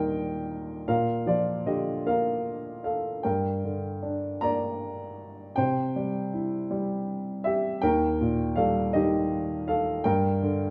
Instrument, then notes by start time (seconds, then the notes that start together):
upright piano
Already playing: D#2 A#2 D#3 G3 G4 A#4 D#5 G5
0.88 A#2 A#4 F5
1.26 F3 F4 D5
1.66 D3 G4 D#5
2.06 A#3 A#4 F5
2.84 A4 F5
3.23 G2 A#4 G5
3.64 D3
4.02 D4
4.41 A#3 D5 A#5
5.56 C3 C5 G5
5.96 G3
6.33 E4
6.71 G3
7.44 G4 E5
7.81 D#2 A#4 G5
8.21 A#2
8.56 G3 A4 F5
8.93 D#3 G4 D#5
9.68 A4 F5
10.04 G2 A#4 G5
10.43 D3